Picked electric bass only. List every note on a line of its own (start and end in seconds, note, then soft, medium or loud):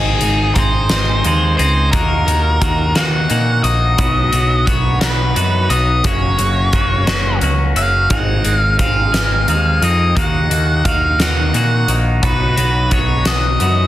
0.00 0.18 G#1 medium
0.22 0.52 G#1 medium
0.56 0.87 G#1 medium
0.91 1.21 G#1 medium
1.25 1.55 D#2 medium
1.59 1.90 C#2 medium
1.93 2.24 D#2 medium
2.27 2.58 D#2 medium
2.61 2.92 D#2 medium
2.95 3.26 D#2 medium
3.30 3.61 A#2 medium
3.64 3.95 A#1 medium
3.99 4.30 B1 medium
4.33 4.64 B1 medium
4.67 4.98 B1 medium
5.02 5.33 B1 medium
5.36 5.67 F#2 medium
5.70 6.01 B1 medium
6.39 6.70 F#1 medium
6.73 7.04 F#1 medium
7.07 7.38 F#1 medium
7.42 7.73 C#2 medium
7.75 8.07 F#1 medium
8.10 8.41 G#1 medium
8.45 8.76 G#1 medium
9.13 9.45 G#1 medium
9.48 9.79 D#2 medium
9.82 10.13 F2 medium
10.16 10.48 D#2 medium
10.50 10.82 D#2 medium
10.85 11.16 D#2 medium
11.19 11.51 D#2 medium
11.54 11.85 A#2 medium
11.88 12.19 A#1 medium
12.23 12.54 B1 medium
12.58 12.89 B1 medium
12.91 13.23 B1 medium
13.25 13.57 B1 medium
13.61 13.87 F#2 medium